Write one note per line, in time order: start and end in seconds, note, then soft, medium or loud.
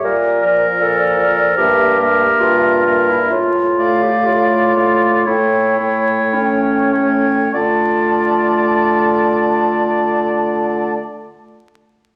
0.04 0.71 A#2 soft
0.04 0.52 A#4 medium
0.40 1.17 F3 soft
0.40 1.16 A#4 soft
0.40 1.17 D5 soft
0.79 1.49 A#2 medium
0.79 1.54 A4 medium
1.19 1.58 F3 soft
1.19 1.56 A#4 soft
1.19 1.58 D5 soft
1.57 2.24 G2 soft
1.57 1.98 A#3 soft
1.57 2.42 G4 medium
1.57 1.97 A#4 soft
1.57 1.98 E5 soft
1.99 2.83 A#3 soft
1.99 2.84 A#4 soft
1.99 2.83 E5 soft
2.40 3.20 G2 soft
2.40 3.10 F4 medium
2.85 3.30 A#3 soft
2.85 3.30 A#4 soft
2.85 3.31 E5 soft
3.09 3.30 E4 medium
3.31 4.16 A2 soft
3.31 4.04 F4 medium
3.79 4.74 A3 soft
3.79 4.74 D5 soft
3.79 4.74 F5 soft
4.03 4.25 G4 medium
4.26 5.15 A2 soft
4.26 5.25 F4 medium
4.77 5.27 A3 soft
4.77 5.25 D5 soft
4.77 5.27 F5 soft
5.26 6.22 A2 soft
5.26 5.80 A3 soft
5.26 6.35 E4 medium
5.26 5.79 C#5 soft
5.26 5.80 G5 soft
5.79 6.92 A3 soft
5.79 6.91 C#5 soft
5.79 6.92 G5 soft
6.34 7.41 A2 soft
6.34 7.36 C#4 soft
6.93 7.54 A3 soft
6.93 7.53 C#5 soft
6.93 7.54 G5 soft
7.53 10.94 D3 soft
7.53 10.96 A3 soft
7.53 10.93 F4 soft
7.53 10.95 D5 soft
7.53 10.96 A5 soft